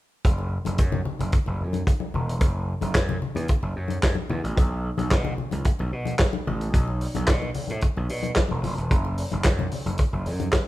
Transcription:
0.25 slap bass F#1, kick, closed hi-hat
0.38 muted conga
0.65 slap bass F#1, closed hi-hat, high conga
0.78 slap bass F#2, kick, closed hi-hat
0.92 high conga, low conga
1.05 low conga
1.19 slap bass F#1, closed hi-hat, high conga
1.32 kick, closed hi-hat, muted conga
1.46 slap bass F#1, muted conga
1.61 slap bass F#2
1.73 closed hi-hat, high conga
1.87 kick, closed hi-hat, muted conga
2.00 high conga
2.14 slap bass E1, low conga
2.29 closed hi-hat
2.41 slap bass F#1, kick, closed hi-hat, muted conga
2.81 slap bass F#1, closed hi-hat, high conga
2.94 slap bass F#2, kick, snare, clap, closed hi-hat
3.09 muted conga, high conga, low conga
3.22 low conga
3.35 slap bass E2, closed hi-hat, high conga
3.48 kick, closed hi-hat
3.62 slap bass F#1, muted conga
3.76 slap bass F#2
3.88 closed hi-hat, high conga
4.03 slap bass F#2, kick, snare, clap, closed hi-hat
4.15 muted conga, high conga
4.30 slap bass E2, low conga
4.44 slap bass A1, closed hi-hat
4.57 slap bass B1, kick, closed hi-hat
4.98 slap bass B1, closed hi-hat, high conga
5.11 slap bass B2, kick, snare, clap, closed hi-hat
5.25 muted conga, high conga, low conga
5.38 low conga
5.51 slap bass C#2, closed hi-hat, high conga
5.64 kick, closed hi-hat
5.79 slap bass B1, muted conga
5.93 slap bass B2
6.06 closed hi-hat, high conga
6.19 kick, snare, clap, closed hi-hat, muted conga
6.33 muted conga, high conga
6.47 slap bass A1, low conga
6.61 closed hi-hat
6.74 slap bass B1, kick, closed hi-hat
6.88 muted conga
7.01 open hi-hat
7.15 slap bass B1, closed hi-hat, high conga
7.27 slap bass B2, kick, snare, clap, closed hi-hat
7.42 high conga
7.54 open hi-hat, low conga
7.68 slap bass A2, closed hi-hat, high conga
7.81 kick, closed hi-hat, muted conga
7.97 slap bass B1, muted conga
8.09 slap bass B2, open hi-hat
8.23 closed hi-hat, high conga
8.36 kick, snare, clap, closed hi-hat, muted conga
8.49 slap bass E1, high conga
8.64 slap bass F#1, open hi-hat, low conga
8.78 slap bass E1, closed hi-hat
8.91 slap bass F#1, kick, closed hi-hat, muted conga
9.05 muted conga
9.18 open hi-hat
9.32 slap bass F#1, closed hi-hat, high conga
9.44 slap bass F#2, kick, snare, clap, closed hi-hat
9.59 muted conga, high conga, low conga
9.71 open hi-hat, low conga
9.86 slap bass F#1, closed hi-hat, high conga
9.98 kick, closed hi-hat
10.13 slap bass F#1, muted conga
10.26 slap bass F#2, open hi-hat
10.40 closed hi-hat, high conga
10.53 kick, snare, clap, closed hi-hat

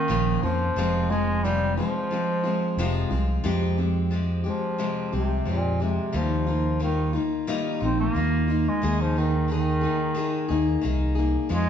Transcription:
Already playing: bass clarinet D#3
0.08 fingered electric bass A#1, steel-string acoustic guitar A#2 F3 A#3 C#4 F4
0.43 fingered electric bass F2, bass clarinet F3, steel-string acoustic guitar A#3 C#4 F4
0.76 fingered electric bass F1, steel-string acoustic guitar F2 C3 F3 G#3 C4 F4
1.10 bass clarinet G#3, steel-string acoustic guitar G#3 C4 F4
1.14 steel-string acoustic guitar F3
1.43 steel-string acoustic guitar F2 C3 F3 C4 F4, bass clarinet G3
1.76 bass clarinet F3, steel-string acoustic guitar G#3 C4 F4
1.81 steel-string acoustic guitar F3
2.11 steel-string acoustic guitar F3 G#3 C4 F4
2.43 steel-string acoustic guitar F3 G#3 C4 F4
2.77 fingered electric bass F1, steel-string acoustic guitar F2 C3 F3 G#3 C4 F4
3.10 fingered electric bass C2, steel-string acoustic guitar F3 G#3 C4 F4
3.44 steel-string acoustic guitar F2 C3 F3 G#3 C4 G4, fingered electric bass F2
3.77 steel-string acoustic guitar F3 G#3 C4 G4
4.11 steel-string acoustic guitar F3 G#3 C4 G4
4.44 bass clarinet F3, steel-string acoustic guitar F3 G#3 C4 G4
4.78 steel-string acoustic guitar F2 C3 F3 G#3 C4 G4
5.12 fingered electric bass C2, bass clarinet C3, steel-string acoustic guitar F3 G#3 C4 G4
5.45 fingered electric bass F2, bass clarinet A#2, steel-string acoustic guitar F3 G#3 C4 G4
5.80 bass clarinet C3, steel-string acoustic guitar F3 G#3 C4 G4
6.12 fingered electric bass D#2, steel-string acoustic guitar D#3 G3 A#3 D#4 F4, bass clarinet F3
6.46 steel-string acoustic guitar A#3 D#4 F4
6.80 bass clarinet D#3, steel-string acoustic guitar G3 A#3 D#4 F4
7.13 steel-string acoustic guitar A#3 D#4 F4
7.47 steel-string acoustic guitar D#3 G3 A#3 D#4 F4
7.80 fingered electric bass A#1, steel-string acoustic guitar A#3 D#4 F4, bass clarinet C4
8.00 bass clarinet A#3
8.15 fingered electric bass D#2, steel-string acoustic guitar G3 A#3 D#4 F4
8.48 steel-string acoustic guitar A#3 D#4 F4
8.68 bass clarinet G#3
8.82 fingered electric bass D#2, steel-string acoustic guitar D#3 A#3 D#4 G#4
9.01 bass clarinet F3
9.16 bass clarinet D#3, steel-string acoustic guitar A#3 D#4 G#4
9.48 steel-string acoustic guitar D#3 A#3 D#4 G#4, bass clarinet D#3
9.81 steel-string acoustic guitar A#3 D#4 G#4
10.15 steel-string acoustic guitar D#3 A#3 D#4 G#4
10.48 fingered electric bass D#2, steel-string acoustic guitar A#3 D#4 G#4
10.81 fingered electric bass C2, steel-string acoustic guitar D#3 A#3 D#4 G#4
11.15 steel-string acoustic guitar A#3 D#4 G#4
11.49 fingered electric bass F2, steel-string acoustic guitar F3 G#3 C#4 F4, bass clarinet G#3

